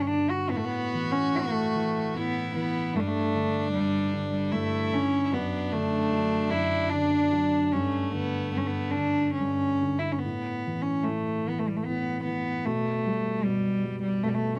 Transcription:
Already playing: G2 D3
0.01 C#4
0.07 D3 D4
0.30 F#4
0.50 A2 B3 F#4
0.57 A3
0.65 B3
0.94 E3
1.12 C#4
1.34 A2 A3
1.75 E3
2.14 A2 B3 E4
2.56 E3 B3
2.93 G2 A3 D4
3.00 G3
3.08 A3
3.35 D3
3.73 G2 G3
4.13 D3
4.33 G3
4.51 G2 A3 E4
4.92 D3 C#4
5.24 E4
5.32 F#2 B3 D4
5.72 D3 A3
6.13 F#3
6.50 F#2 E4
6.89 D3 D4
7.33 F#3
7.72 G2 A3 C#4
8.02 C#4
8.11 D3 B3
8.53 G2 B3
8.58 C#4
8.67 B3
8.92 D4
8.96 D3
9.35 C#4
9.40 G2
9.82 D3
9.99 E4
10.12 C#4
10.19 B3
10.24 A2
10.67 E3
10.82 C#4
11.04 A2 A3
11.48 E3 B3
11.59 A3
11.68 G3
11.77 A3
11.85 A2 B3
12.25 E3 B3
12.65 B2 A3
13.06 G3
13.44 B2 G3
13.85 G3
14.03 G3
14.23 B2 A3
14.29 G3
14.35 A3

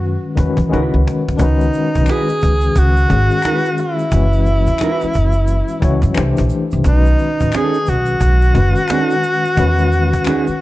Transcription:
Already playing: F#2 D#3 G#3 C#4 F#4 B4
0.04 cajon slap
0.25 cajon slap
0.35 E2 D#3 G#3 C#4 F#4, cajon bass
0.40 B4
0.57 E3, cajon bass
0.69 D#3 G#3 C#4 F#4
0.73 C#2 E4 F#4 B4, cajon slap
0.94 C#2
1.07 cajon slap
1.28 D2, cajon slap
1.37 C#2 D#3 G#3 C#4 D4 F#4, cajon bass, shaker
1.42 D#4 B4
1.61 shaker
1.74 shaker
1.95 B1, cajon bass, shaker
2.06 E4, finger snap, cajon slap, shaker
2.10 F#4 G#4 B4
2.29 shaker
2.41 C#2, cajon bass, shaker
2.61 cajon slap, shaker
2.76 C#2 F#4, cajon bass, shaker
2.97 shaker
3.08 G#1 D#3 G#3 C#4 F#4, cajon bass
3.13 G#4
3.31 shaker
3.42 E4 F#4, finger snap, cajon slap, shaker
3.47 B4
3.65 shaker
3.78 E4, cajon slap, shaker
3.99 cajon slap, shaker
4.11 F#1 E3 G#3 C#4 F#4, cajon bass, shaker
4.15 B4
4.33 shaker
4.46 shaker
4.67 cajon bass, shaker
4.78 E4, finger snap, cajon slap, shaker
4.83 F#4 B4
5.01 muted upright bass stroke, shaker
5.13 F#1, cajon bass, shaker
5.32 shaker
5.47 cajon slap, shaker
5.68 cajon slap, shaker
5.80 C#2 E3 G#3 C#4 F#4, cajon bass
5.84 C#5
6.02 F#2, cajon bass, shaker
6.14 C2 E3 A3 D4 G4, finger snap, cajon slap, shaker
6.19 C5
6.37 A#1, cajon bass, shaker
6.50 cajon slap, shaker
6.71 C2, cajon slap, shaker
6.83 B1 D#3 G#3 C#4 F#4, cajon bass, shaker
6.88 D#4 B4
7.06 shaker
7.19 cajon slap, shaker
7.40 A1, cajon bass, shaker
7.52 C#4 D#4 G#4 A4, finger snap, cajon slap, shaker
7.74 shaker
7.86 B1 F#4, cajon bass, shaker
8.06 shaker
8.20 B1, cajon bass, shaker
8.42 cajon slap, shaker
8.53 F#1 D#3 G#3 C#4 F#4, cajon bass
8.57 B4
8.76 shaker
8.88 C#4, finger snap, cajon slap, shaker
8.92 D#4 A4
9.11 shaker
9.23 cajon slap, shaker
9.45 cajon slap, shaker
9.55 E2 D#3 G#3 C#4 F#4, cajon bass, shaker
9.60 B4
9.79 shaker
9.92 shaker
10.13 cajon bass, shaker
10.24 C#4 D#4 G#4, finger snap, cajon slap, shaker
10.47 muted upright bass stroke, cajon slap, shaker

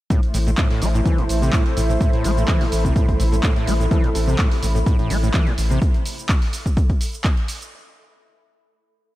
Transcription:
0.10 A2 A3 E4 A4 C5, kick, closed hi-hat, shaker
0.23 E5, closed hi-hat
0.34 A1 A2, open hi-hat, shaker
0.47 A2, closed hi-hat, shaker
0.58 A2 B5, kick, clap, closed hi-hat, shaker
0.71 A2, open hi-hat
0.82 A1 A3, open hi-hat, shaker
0.94 A2, closed hi-hat, shaker
1.05 E3, kick, closed hi-hat, shaker
1.18 A1 A2, closed hi-hat
1.29 A1, open hi-hat, shaker
1.42 C3, closed hi-hat, shaker
1.53 A2, kick, clap, closed hi-hat, shaker
1.66 closed hi-hat
1.77 A1 A2, open hi-hat, shaker
1.90 A2, closed hi-hat, shaker
2.01 A2, kick, closed hi-hat, shaker
2.13 A2, closed hi-hat
2.24 A1 A3, open hi-hat, shaker
2.37 A2, closed hi-hat, shaker
2.48 E3, kick, clap, closed hi-hat, shaker
2.61 A2, open hi-hat
2.72 A1, open hi-hat, shaker
2.85 C3, kick, closed hi-hat, shaker
2.96 A2, kick, closed hi-hat, shaker
3.09 A1, kick, closed hi-hat
3.20 A1 A2, open hi-hat, shaker
3.32 A2, closed hi-hat, shaker
3.43 A2, kick, clap, closed hi-hat, shaker
3.56 A2, closed hi-hat
3.67 A1 A3, open hi-hat, shaker
3.80 A2, closed hi-hat, shaker
3.91 E3 C4 E4 A4, kick, closed hi-hat, shaker
4.04 A2, closed hi-hat
4.15 A1 C4 E4 A4, open hi-hat, shaker
4.28 C3, closed hi-hat, shaker
4.38 A2, kick, clap, closed hi-hat, shaker
4.51 open hi-hat
4.62 A1 A2, open hi-hat, shaker
4.75 A2, closed hi-hat, shaker
4.86 A2, kick, closed hi-hat, shaker
4.99 A1 A2, closed hi-hat
5.10 A1 A3, open hi-hat, shaker
5.23 A2, closed hi-hat, shaker
5.34 E3, kick, clap, closed hi-hat, shaker
5.47 A2, closed hi-hat
5.58 A1, open hi-hat, shaker
5.70 C3, closed hi-hat, shaker
5.82 kick, closed hi-hat, shaker
5.94 closed hi-hat
6.05 open hi-hat, shaker
6.18 closed hi-hat, shaker
6.29 kick, clap, closed hi-hat, shaker
6.42 open hi-hat
6.53 open hi-hat, shaker
6.66 kick, closed hi-hat, shaker
6.77 kick, closed hi-hat, shaker
6.90 kick, closed hi-hat
7.01 open hi-hat, shaker
7.13 closed hi-hat, shaker
7.24 kick, clap, closed hi-hat, shaker
7.37 closed hi-hat
7.48 open hi-hat, shaker
7.61 closed hi-hat, shaker

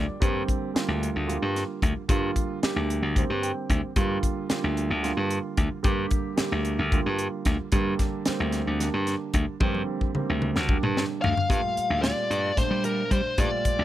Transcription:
Already playing: D3 G3 A#3 F4 D5
0.09 muted slap bass stroke
0.20 G2 D3 G3 A#3 C4, kick, closed hi-hat
0.48 kick, closed hi-hat
0.73 D3 G3 A#3 F4, muted slap bass stroke, snare, closed hi-hat
0.88 D2
1.03 closed hi-hat
1.16 D2
1.26 D3 G3 A#3 F4, closed hi-hat
1.42 G2
1.56 snare, closed hi-hat
1.82 D2, kick, closed hi-hat
1.97 muted slap bass stroke
2.08 G2 D3 G3 A#3 F4, kick, closed hi-hat
2.36 kick, closed hi-hat
2.62 D3 G3 A#3 G4, muted slap bass stroke, snare, closed hi-hat
2.76 D2
2.90 closed hi-hat
3.02 D2
3.16 D3 G3 A#3 C4, kick, closed hi-hat
3.30 G2
3.43 G5, closed hi-hat
3.70 D2, kick, closed hi-hat
3.83 muted slap bass stroke
3.96 G2 D3 G3 A#3 F4, kick, closed hi-hat
4.23 kick, closed hi-hat
4.49 D3 G3 A#3 F4, muted slap bass stroke, snare, closed hi-hat
4.64 D2
4.77 closed hi-hat
4.90 D2
5.03 D3 G3 A#3 F4, snare, closed hi-hat
5.17 G2
5.31 closed hi-hat
5.57 D2, kick, closed hi-hat
5.71 muted slap bass stroke
5.83 G2 D3 G3 A#3 G4, kick, closed hi-hat
6.11 kick, closed hi-hat
6.36 D3 G3 A#3 G4, muted slap bass stroke, snare, closed hi-hat
6.52 D2
6.65 closed hi-hat
6.79 D2
6.92 D3 G3 A#3 F4, kick, closed hi-hat
7.06 G2
7.19 closed hi-hat
7.45 D2, kick, snare, closed hi-hat
7.60 muted slap bass stroke
7.72 G2 D3 G3 A#3 D4, kick, closed hi-hat
7.99 kick, snare, closed hi-hat
8.25 D3 G3 A#3 C4, muted slap bass stroke, snare, closed hi-hat
8.40 D2
8.52 snare, closed hi-hat
8.67 D2
8.79 D3 G3 A#3 D4, snare, closed hi-hat
8.94 G2
9.07 snare, closed hi-hat
9.33 D2, kick, closed hi-hat
9.48 muted slap bass stroke
9.60 G2 D3 G3 A#3 C4, kick, high tom
9.75 high tom
10.01 kick
10.15 D3 G3 A#3 C4, muted slap bass stroke, mid tom
10.30 D2
10.42 mid tom
10.56 D2, snare
10.68 D3 G3 A#3 D4, kick
10.83 G2, mid tom
10.97 snare
11.22 D2 F5, floor tom
11.37 muted slap bass stroke, floor tom
11.48 G2 A#2 G3 A3 F4, kick, closed hi-hat
11.77 muted slap bass stroke, closed hi-hat
11.90 D2
12.02 A#2 G3 A3 F4 D5, snare, closed hi-hat
12.30 G2, closed hi-hat
12.56 A#2 G3 A3 D4 C5, kick, snare, closed hi-hat
12.71 G3
12.84 A#4, closed hi-hat
13.11 G3 C5, kick, closed hi-hat
13.25 muted slap bass stroke
13.38 G2 A#2 G3 A3 F4 D5, kick, closed hi-hat
13.65 muted slap bass stroke, kick, closed hi-hat
13.79 D2

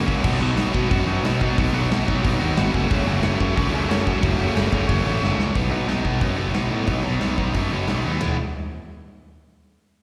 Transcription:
0.05 C#2 F#2 C#3 F#3 A#3 C#4 F#4, kick
0.22 B1 B2 F#3 B3 D#4 F#4, kick, crash
0.40 B1 B2 F#3 B3 D#4 F#4
0.56 B1 B2 F#3 B3 D#4 F#4, snare, open hi-hat
0.73 B2 F#3 B3 D#4 F#4, kick
0.89 F#2 B2 F#3 B3 D#4 F#4, kick, open hi-hat
1.06 F#2 B2 F#3 B3 D#4 F#4
1.23 B2 F#3 B3 D#4 F#4, snare, open hi-hat
1.40 B2 F#3 B3 D#4 F#4, kick
1.57 B1 B2 F#3 B3 D#4 F#4, kick, open hi-hat
1.73 B1 B2 F#3 B3 D#4 F#4
1.91 B1 B2 F#3 B3 D#4 F#4, snare, open hi-hat
2.07 B1 B2 F#3 B3 D#4 F#4, kick
2.23 B1 B2 F#3 B3 D#4 F#4, kick, open hi-hat
2.39 D#2 B2 F#3 B3 D#4 F#4
2.56 G#1 B2 F#3 B3 D#4 F#4, snare, open hi-hat
2.73 F#1 F#2 C#3 F#3 A3 C#4 F#4, kick
2.90 F#1 F#2 C#3 F#3 A3 C#4 F#4, kick, open hi-hat
3.06 F#1 F#2 C#3 F#3 A3 C#4 F#4
3.23 F#1 F#2 C#3 F#3 A3 C#4 F#4, snare, open hi-hat
3.40 F#2 C#3 F#3 A3 C#4 F#4, kick
3.56 C#2 F#2 C#3 F#3 A3 C#4 F#4, kick, open hi-hat
3.73 C#2 F#2 C#3 F#3 A3 C#4 F#4
3.89 F#2 C#3 F#3 A3 C#4 F#4, snare, open hi-hat
4.05 F#2 C#3 F#3 A3 C#4 F#4, kick
4.21 F#1 F#2 C#3 F#3 A3 C#4 F#4, kick, open hi-hat
4.37 F#1 F#2 C#3 F#3 A3 C#4 F#4
4.55 F#1 F#2 C#3 F#3 A3 C#4 F#4, snare, open hi-hat
4.71 F#1 F#2 C#3 F#3 A3 C#4 F#4, kick
4.88 F#1 F#2 C#3 F#3 A3 C#4 F#4, kick, open hi-hat
5.05 A1 F#2 C#3 F#3 A3 C#4 F#4
5.21 F#1 F#2 C#3 F#3 A3 C#4 F#4, snare
5.38 C#2 F#2 C#3 F#3 A3 C#4 F#4, snare
5.55 B1 B2 F#3 B3 D#4, kick, open hi-hat
5.70 B1 B2 F#3 B3 D#4
5.87 B1 B2 F#3 B3 D#4, snare, open hi-hat
6.03 B1 B2 F#3 B3 D#4, kick
6.20 F#2 B2 F#3 B3 D#4, kick, open hi-hat
6.37 F#1 B2 F#3 B3 D#4
6.54 B1 B2 F#3 B3 D#4, snare, open hi-hat
6.70 A2 B2 F#3 B3 D#4
6.87 B1 B2 F#3 B3 D#4, kick, open hi-hat
7.03 B1 B2 F#3 B3 D#4
7.20 B1 B2 F#3 B3 D#4, snare, open hi-hat
7.37 B1 B2 F#3 B3 D#4, kick
7.54 F#2 B2 F#3 B3 D#4, kick, open hi-hat
7.71 F#1 B2 F#3 B3 D#4
7.87 B1 B2 F#3 B3 D#4, snare, open hi-hat
8.04 D#2 B2 F#3 B3 D#4
8.20 E1 E3 G#3 B3 E4, snare, floor tom, ride bell

